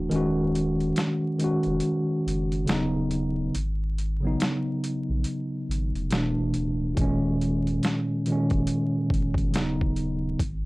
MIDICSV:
0, 0, Header, 1, 4, 480
1, 0, Start_track
1, 0, Key_signature, -6, "minor"
1, 0, Tempo, 857143
1, 63, Time_signature, 4, 2, 24, 8
1, 5966, End_track
2, 0, Start_track
2, 0, Title_t, "Tine electric piano"
2, 0, Program_c, 0, 4
2, 0, Control_c, 0, 64, 127
2, 0, Note_on_c, 0, 52, 90
2, 0, Note_on_c, 0, 57, 80
2, 0, Note_on_c, 0, 62, 87
2, 0, Note_on_c, 0, 66, 92
2, 52, Note_on_c, 0, 51, 117
2, 63, Note_on_c, 0, 56, 103
2, 70, Control_c, 0, 64, 0
2, 71, Note_off_c, 0, 57, 0
2, 71, Note_off_c, 0, 62, 0
2, 73, Note_on_c, 0, 61, 87
2, 76, Note_off_c, 0, 52, 0
2, 76, Note_off_c, 0, 66, 0
2, 87, Note_on_c, 0, 66, 107
2, 160, Control_c, 0, 64, 127
2, 536, Note_off_c, 0, 51, 0
2, 541, Note_off_c, 0, 56, 0
2, 546, Note_off_c, 0, 61, 0
2, 553, Note_off_c, 0, 66, 0
2, 774, Note_on_c, 0, 51, 77
2, 785, Note_on_c, 0, 56, 68
2, 796, Note_on_c, 0, 61, 67
2, 807, Note_on_c, 0, 66, 100
2, 1433, Note_off_c, 0, 51, 0
2, 1438, Note_off_c, 0, 56, 0
2, 1444, Note_off_c, 0, 61, 0
2, 1449, Note_off_c, 0, 66, 0
2, 1489, Note_on_c, 0, 49, 92
2, 1502, Note_on_c, 0, 54, 83
2, 1511, Control_c, 0, 64, 0
2, 1512, Note_on_c, 0, 59, 83
2, 1523, Note_on_c, 0, 63, 105
2, 1622, Control_c, 0, 64, 127
2, 1900, Note_off_c, 0, 49, 0
2, 1906, Note_off_c, 0, 54, 0
2, 1911, Note_off_c, 0, 59, 0
2, 1917, Note_off_c, 0, 63, 0
2, 1991, Control_c, 0, 64, 0
2, 2099, Control_c, 0, 64, 127
2, 2353, Note_on_c, 0, 49, 79
2, 2366, Note_on_c, 0, 54, 78
2, 2378, Note_on_c, 0, 59, 76
2, 2390, Note_on_c, 0, 63, 88
2, 2980, Note_off_c, 0, 49, 0
2, 2987, Note_off_c, 0, 54, 0
2, 2993, Note_off_c, 0, 59, 0
2, 2999, Note_off_c, 0, 63, 0
2, 3418, Note_on_c, 0, 47, 87
2, 3430, Control_c, 0, 64, 0
2, 3430, Note_on_c, 0, 52, 75
2, 3441, Note_on_c, 0, 57, 78
2, 3454, Note_on_c, 0, 62, 95
2, 3534, Control_c, 0, 64, 127
2, 3824, Note_off_c, 0, 47, 0
2, 3831, Note_off_c, 0, 52, 0
2, 3836, Note_off_c, 0, 57, 0
2, 3842, Note_off_c, 0, 62, 0
2, 3891, Note_on_c, 0, 46, 97
2, 3901, Note_on_c, 0, 51, 90
2, 3910, Control_c, 0, 64, 0
2, 3915, Note_on_c, 0, 56, 103
2, 3926, Note_on_c, 0, 61, 106
2, 4014, Control_c, 0, 64, 127
2, 4375, Note_off_c, 0, 46, 0
2, 4380, Note_off_c, 0, 51, 0
2, 4387, Note_off_c, 0, 56, 0
2, 4393, Note_off_c, 0, 61, 0
2, 4626, Note_on_c, 0, 46, 71
2, 4637, Note_on_c, 0, 51, 81
2, 4648, Note_on_c, 0, 56, 69
2, 4660, Note_on_c, 0, 61, 95
2, 5279, Note_off_c, 0, 46, 0
2, 5284, Note_off_c, 0, 51, 0
2, 5289, Note_off_c, 0, 56, 0
2, 5295, Note_off_c, 0, 61, 0
2, 5326, Note_on_c, 0, 49, 84
2, 5336, Note_on_c, 0, 54, 75
2, 5347, Note_on_c, 0, 59, 75
2, 5350, Control_c, 0, 64, 0
2, 5359, Note_on_c, 0, 63, 100
2, 5435, Control_c, 0, 64, 127
2, 5738, Note_off_c, 0, 49, 0
2, 5744, Note_off_c, 0, 54, 0
2, 5749, Note_off_c, 0, 59, 0
2, 5755, Note_off_c, 0, 63, 0
2, 5830, Control_c, 0, 64, 0
2, 5944, Control_c, 0, 64, 127
2, 5966, End_track
3, 0, Start_track
3, 0, Title_t, "Sub bass"
3, 0, Program_c, 1, 38
3, 60, Note_on_c, 1, 27, 99
3, 519, Note_off_c, 1, 27, 0
3, 928, Note_on_c, 1, 29, 88
3, 1016, Note_off_c, 1, 29, 0
3, 1267, Note_on_c, 1, 30, 91
3, 1485, Note_off_c, 1, 30, 0
3, 1504, Note_on_c, 1, 27, 89
3, 1961, Note_off_c, 1, 27, 0
3, 1987, Note_on_c, 1, 32, 95
3, 2443, Note_off_c, 1, 32, 0
3, 2852, Note_on_c, 1, 34, 89
3, 2938, Note_off_c, 1, 34, 0
3, 3185, Note_on_c, 1, 32, 89
3, 3317, Note_off_c, 1, 32, 0
3, 3329, Note_on_c, 1, 29, 79
3, 3416, Note_off_c, 1, 29, 0
3, 3427, Note_on_c, 1, 28, 92
3, 3558, Note_off_c, 1, 28, 0
3, 3572, Note_on_c, 1, 28, 84
3, 3658, Note_off_c, 1, 28, 0
3, 3669, Note_on_c, 1, 26, 93
3, 3886, Note_off_c, 1, 26, 0
3, 3906, Note_on_c, 1, 27, 103
3, 4362, Note_off_c, 1, 27, 0
3, 4768, Note_on_c, 1, 29, 88
3, 4855, Note_off_c, 1, 29, 0
3, 5097, Note_on_c, 1, 30, 86
3, 5342, Note_on_c, 1, 27, 94
3, 5350, Note_off_c, 1, 30, 0
3, 5800, Note_off_c, 1, 27, 0
3, 5823, Note_on_c, 1, 32, 101
3, 5966, Note_off_c, 1, 32, 0
3, 5966, End_track
4, 0, Start_track
4, 0, Title_t, "Drums"
4, 62, Note_on_c, 9, 42, 70
4, 118, Note_off_c, 9, 42, 0
4, 309, Note_on_c, 9, 42, 58
4, 365, Note_off_c, 9, 42, 0
4, 450, Note_on_c, 9, 42, 32
4, 506, Note_off_c, 9, 42, 0
4, 538, Note_on_c, 9, 42, 80
4, 548, Note_on_c, 9, 38, 99
4, 594, Note_off_c, 9, 42, 0
4, 604, Note_off_c, 9, 38, 0
4, 781, Note_on_c, 9, 42, 67
4, 837, Note_off_c, 9, 42, 0
4, 914, Note_on_c, 9, 42, 33
4, 970, Note_off_c, 9, 42, 0
4, 1009, Note_on_c, 9, 42, 76
4, 1065, Note_off_c, 9, 42, 0
4, 1275, Note_on_c, 9, 42, 63
4, 1331, Note_off_c, 9, 42, 0
4, 1410, Note_on_c, 9, 42, 35
4, 1466, Note_off_c, 9, 42, 0
4, 1497, Note_on_c, 9, 42, 78
4, 1508, Note_on_c, 9, 38, 102
4, 1553, Note_off_c, 9, 42, 0
4, 1564, Note_off_c, 9, 38, 0
4, 1740, Note_on_c, 9, 42, 61
4, 1796, Note_off_c, 9, 42, 0
4, 1986, Note_on_c, 9, 42, 75
4, 2042, Note_off_c, 9, 42, 0
4, 2231, Note_on_c, 9, 42, 57
4, 2287, Note_off_c, 9, 42, 0
4, 2465, Note_on_c, 9, 42, 82
4, 2475, Note_on_c, 9, 38, 103
4, 2521, Note_off_c, 9, 42, 0
4, 2531, Note_off_c, 9, 38, 0
4, 2709, Note_on_c, 9, 42, 66
4, 2765, Note_off_c, 9, 42, 0
4, 2936, Note_on_c, 9, 42, 79
4, 2992, Note_off_c, 9, 42, 0
4, 3198, Note_on_c, 9, 42, 64
4, 3254, Note_off_c, 9, 42, 0
4, 3334, Note_on_c, 9, 42, 34
4, 3390, Note_off_c, 9, 42, 0
4, 3419, Note_on_c, 9, 42, 78
4, 3430, Note_on_c, 9, 38, 100
4, 3475, Note_off_c, 9, 42, 0
4, 3486, Note_off_c, 9, 38, 0
4, 3661, Note_on_c, 9, 42, 60
4, 3717, Note_off_c, 9, 42, 0
4, 3903, Note_on_c, 9, 36, 103
4, 3904, Note_on_c, 9, 42, 73
4, 3959, Note_off_c, 9, 36, 0
4, 3960, Note_off_c, 9, 42, 0
4, 4152, Note_on_c, 9, 42, 61
4, 4208, Note_off_c, 9, 42, 0
4, 4295, Note_on_c, 9, 42, 32
4, 4351, Note_off_c, 9, 42, 0
4, 4384, Note_on_c, 9, 42, 87
4, 4394, Note_on_c, 9, 38, 97
4, 4440, Note_off_c, 9, 42, 0
4, 4450, Note_off_c, 9, 38, 0
4, 4625, Note_on_c, 9, 42, 65
4, 4681, Note_off_c, 9, 42, 0
4, 4760, Note_on_c, 9, 42, 33
4, 4766, Note_on_c, 9, 36, 86
4, 4816, Note_off_c, 9, 42, 0
4, 4822, Note_off_c, 9, 36, 0
4, 4855, Note_on_c, 9, 42, 81
4, 4911, Note_off_c, 9, 42, 0
4, 5096, Note_on_c, 9, 36, 92
4, 5117, Note_on_c, 9, 42, 61
4, 5152, Note_off_c, 9, 36, 0
4, 5173, Note_off_c, 9, 42, 0
4, 5232, Note_on_c, 9, 36, 87
4, 5252, Note_on_c, 9, 42, 35
4, 5288, Note_off_c, 9, 36, 0
4, 5308, Note_off_c, 9, 42, 0
4, 5340, Note_on_c, 9, 42, 79
4, 5351, Note_on_c, 9, 38, 100
4, 5396, Note_off_c, 9, 42, 0
4, 5407, Note_off_c, 9, 38, 0
4, 5495, Note_on_c, 9, 36, 81
4, 5551, Note_off_c, 9, 36, 0
4, 5579, Note_on_c, 9, 42, 62
4, 5635, Note_off_c, 9, 42, 0
4, 5821, Note_on_c, 9, 36, 105
4, 5823, Note_on_c, 9, 42, 77
4, 5877, Note_off_c, 9, 36, 0
4, 5879, Note_off_c, 9, 42, 0
4, 5966, End_track
0, 0, End_of_file